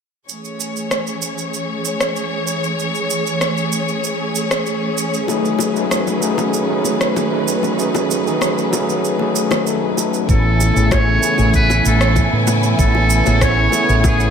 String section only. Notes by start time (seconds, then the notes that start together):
0.28 E3 A3 C#4 G#4 C#5
5.28 D#3 B4
10.28 C#3 E3 A3 E4 G#5
12.79 B3